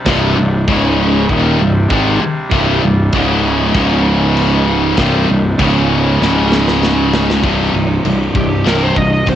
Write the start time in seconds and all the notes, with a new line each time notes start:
Already playing: C3 G3 D4
0.06 C1 C2 G2 C3, kick, snare, china
0.37 C1 C2 G2
0.68 C#1 C#2 G#2 C#3 G#3 D#4, kick, china
1.29 D#1 D#2 A#2 C3 D#3 G3 D4, kick, china
1.59 C1 C2 G2
1.90 G#1 G#2 D#3 G#3, kick, china
2.21 muted picked electric bass stroke, muted distorted electric guitar stroke
2.51 C1 C2 G2 C3, kick, china
2.83 C1 C2 G2
3.12 C#1 C#2 G#2 C#3 G#3 D#4, kick, china
3.74 C#1 C#2 G#2 C#3, kick, china
4.37 china
4.97 C1 C2 G2 C3 G3 D4, kick, snare, china
5.29 C1 C2 G2
5.57 C#1 C#2 C#3 G#3 D#4, kick, china
5.61 G#2 C#3
6.21 C#1 C#2 G#2 C#3, snare
6.52 snare
6.68 snare
6.83 snare
7.14 snare
7.30 snare
7.43 C1 C2 G2 C3 G3 D#4, kick, crash
7.74 C1 C2 G2
8.05 C1 C2 G2, crash
8.35 C1 C2 G2 G4, kick
8.64 C1 C2 G2 C3 A#4, snare, crash
8.83 C5
8.96 C1 C2 G2 D#5, kick
9.26 C1 C2 G2 C5, kick, crash